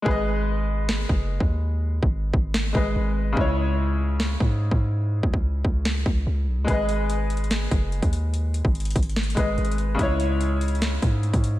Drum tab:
HH |------------------------------------------------------------------------------------------------|------------------------------------------------------------------------------------------------|------------------------------------------------------------------------------------------------|------------------------------------------------------------------------------------------------|
SD |------------------------------------------------o-----------------------------------------------|------------------------------------------------o-----------------------------------------------|------------------------------------------------o-----------------------------------------------|------------------------------------------------o-----------------------------------------------|
BD |o-----------------------------------------------------------o-----------------o-----------------|------------------o-----------------o-----------------------o-----------------------------------|o-----------------------------------------------------------o-----------------o-----------------|------------o-----o-----------------o-----------------------o-----------------------------------|

HH |x-----------x-----------x-----------x---x---x---x-----------x-----------x-----x-----x-----------|x-----------x-----------x--x--x--x--x---x---x---x---x---x---x-----------x---x---x---x-----------|x-----------x-----------x-----------x---x---x---x-----------x-----------x-----x-----x-----------|
SD |------------------------------------------------o-----------------------------------------------|------------------------------------------------o-----------------------------------------------|------------------------------------------------o-----------------------------------------------|
BD |o-----------------------------------------------------------o-----------------o-----------------|------------------o-----------------o-----------------------o-----------------------------------|o-----------------------------------------------------------o-----------------o-----------------|